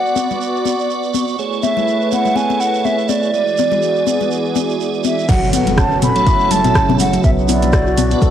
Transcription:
Already playing: B3 F#4 D5 F#5 C#6
0.06 shekere
0.16 high conga, shekere
0.30 low conga, shekere
0.41 shekere
0.56 shekere
0.66 high conga, shekere
0.79 shekere
0.90 shekere
1.03 shekere
1.14 high conga, shekere
1.28 shekere
1.38 A3 E4 G#4 B4 C#5, shekere
1.52 shekere
1.63 E5, high conga, shekere
1.77 low conga, shekere
1.88 shekere
2.01 shekere
2.12 F#5, high conga, shekere
2.25 low conga, shekere
2.36 G#5, high conga, shekere
2.50 high conga, shekere
2.60 F#5, shekere
2.74 shekere
2.85 E5, high conga, shekere
2.98 shekere
3.09 D5, high conga, shekere
3.23 shekere
3.34 E3 G#3 B3 E4 F#4 G#4 D5, shekere
3.47 shekere
3.58 high conga, shekere
3.72 low conga, shekere
3.82 shekere
3.96 shekere
4.07 high conga, shekere
4.21 low conga, shekere
4.31 shekere
4.45 shekere
4.55 high conga, shekere
4.70 shekere
4.80 shekere
4.94 shekere
5.04 E5, high conga, shekere
5.19 shekere
5.28 F#1 F#3 C#4 F#4 A4 F#5, kick, closed hi-hat, crash, impact, shekere
5.43 shekere
5.53 B3 F#5, open hi-hat, high conga, shekere
5.67 closed hi-hat, low conga, shekere
5.78 C#4 A5, kick, cross-stick, closed hi-hat, shekere
5.91 C#4, shekere
6.02 B5, mid tom, open hi-hat, high conga, shekere
6.16 F#3 A3 F#4 C#5, closed hi-hat, shekere
6.26 E4, kick, closed hi-hat, shekere
6.40 shekere
6.51 F#1 F#3 A5, open hi-hat, low conga, shekere
6.64 A3 F#4 E5, closed hi-hat, mid tom, high conga, shekere
6.75 C#3, kick, cross-stick, closed hi-hat, shekere
6.89 F#3, mid tom, high conga, shekere
6.99 F#5, open hi-hat, low conga, shekere
7.13 F#3, closed hi-hat, shekere
7.24 B1 B3 D4 E5, kick, closed hi-hat, shekere
7.38 shekere
7.48 E4 D5, open hi-hat, high conga, shekere
7.62 closed hi-hat, low conga, shekere
7.73 F#4, kick, cross-stick, closed hi-hat, shekere
7.87 F#4, shekere
7.98 mid tom, open hi-hat, high conga, shekere
8.11 B3 F#4 D5, closed hi-hat, shekere
8.22 A4, kick, closed hi-hat, low conga, shekere

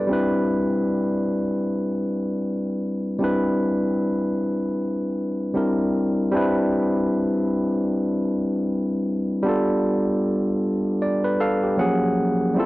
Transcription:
Already playing: G4 A4 B4 D5
0.07 G3 C4 D4
0.11 E4 B4
3.19 G3 C4 D4 E4
3.24 B4
5.54 G3 C4 D4 E4 A#4
6.32 G3 C4 D4 E4
6.37 B4
9.43 G3 B3 D4
9.47 F4 A4
11.02 D5
11.24 B4
11.40 A4 F5
11.63 G4
11.77 F3 F#3 A#3 C#4 G#4 F#5
12.54 G3 C4 E4
12.59 F4 A4

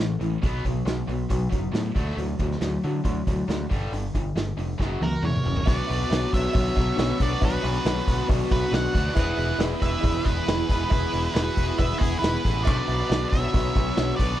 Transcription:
Already playing: A1
0.00 A2 E3
0.19 A1 A2 E3, open hi-hat
0.42 B1 B2 F#3 B3, kick, open hi-hat
0.65 B1 B2 F#3, kick, open hi-hat
0.86 B1 B2 F#3, snare, open hi-hat
1.08 B1 B2 F#3, open hi-hat
1.30 B1 B2 F#3, kick, open hi-hat
1.50 F#1 B2 F#3, kick, open hi-hat
1.72 A2 B2 F#3, snare, open hi-hat
1.95 D2 D3 F#3 A3, kick, open hi-hat
2.09 snare
2.16 D2 D3 F#3, open hi-hat
2.39 D2 D3 F#3, kick, open hi-hat
2.51 snare
2.61 D2 D3 F#3, snare, open hi-hat
2.83 D3 F#3, open hi-hat
3.04 D2 D3 F#3, kick, open hi-hat
3.27 D2 D3 F#3, kick, open hi-hat
3.48 D2 D3 F#3, snare, open hi-hat
3.69 G1 G2 D3 G3, kick, open hi-hat
3.92 G1 G2 D3, open hi-hat
4.14 G1 G2 D3, kick, open hi-hat
4.35 G1 G2 D3, snare, open hi-hat
4.57 F1 G2 D3, open hi-hat
4.78 F#1 F#2 C#3 F#3, kick, snare
5.00 C#2 F#2 C#3 F#4 A#4, high tom
5.23 E2 F#2 C#3 A#4 C#5, mid tom
5.35 mid tom
5.43 F#1 F#2 C#3, floor tom
5.57 floor tom
5.66 B1 B2 F#3 B3 D4 F#4 B4 D5 C#6, kick, open hi-hat, cowbell
5.70 B4
5.87 B1, open hi-hat, cowbell
6.10 B1 D4 B4 C#5, snare, open hi-hat, cowbell
6.33 B1 C#5 E5, kick, open hi-hat
6.46 snare
6.52 B1 D4 B4 C#5, kick, open hi-hat, cowbell
6.75 B1, kick, open hi-hat, cowbell
6.96 B1 D4 B4 C#5, snare, open hi-hat, cowbell
7.19 B1 B2 F#3 B3 D4 F#4 D5, kick, open hi-hat
7.23 B4
7.41 B1 B2 F#3 B3 D4 F#4 B4 C#5, kick, open hi-hat, cowbell
7.62 B1, open hi-hat, cowbell
7.85 B1 D4 B4 C#5, snare, open hi-hat, cowbell
8.07 B1, kick, open hi-hat
8.28 B1 D4 B4 D5, kick, open hi-hat, cowbell
8.42 snare
8.51 B1 F#4 B4, kick, open hi-hat, cowbell
8.70 B1 D4 B4 D5 C#6, snare, open hi-hat, cowbell
8.75 F#5
8.94 D2 F#3 B3 D4 F#4, kick, open hi-hat
8.99 B2
9.14 E1 E3 B3 E4 G#4 B4, kick, crash, cowbell
9.18 B4 F#5
9.37 E1, open hi-hat, cowbell
9.59 E1 E4 G#4 B4, snare, open hi-hat, cowbell
9.80 E1 B4 E5, kick, open hi-hat
10.01 E1 E4 G#4 D5, kick, open hi-hat, cowbell
10.16 snare
10.25 E1 E4 B4, kick, open hi-hat, cowbell
10.47 E1 E4 G#4 B4, snare, open hi-hat, cowbell
10.68 E1 B3 E4 G#4 B4, kick, open hi-hat
10.72 E3
10.89 E1 E3 B3 E4 G#4 B4, kick, open hi-hat, cowbell
10.93 B4
11.13 E1, open hi-hat, cowbell
11.32 E1 E4 G#4 B4, open hi-hat, cowbell
11.36 B4, snare
11.43 F#4 B4
11.57 E1, kick, open hi-hat
11.75 E1 E4 G#4 B4 E5, cowbell
11.79 B4, kick, open hi-hat
11.91 snare
11.97 E1 E4 G#4, kick, open hi-hat, cowbell
12.19 E1 E4 B4, cowbell
12.23 G#4 B4, snare, open hi-hat
12.43 A1 B3 E4 G#4 B4, kick, open hi-hat
12.47 E3
12.63 B1 B2 F#3 D4 D#4 B4 C5 D5, kick, cowbell, crash
12.68 B3 D4 F#4 B4 C#6
12.81 D4 B4
12.88 B1, open hi-hat, cowbell
13.09 B1 D4 B4 D5, snare, open hi-hat, cowbell
13.30 B1 C#5 E5, kick, open hi-hat
13.52 B1 D4 B4 C#5, kick, open hi-hat, cowbell
13.65 snare
13.75 B1, kick, open hi-hat, cowbell
13.97 B1 D4 B4 C#5, snare, open hi-hat, cowbell
14.16 B1 D4 F#4 B4 D5, kick, open hi-hat
14.21 B2 F#3 B3

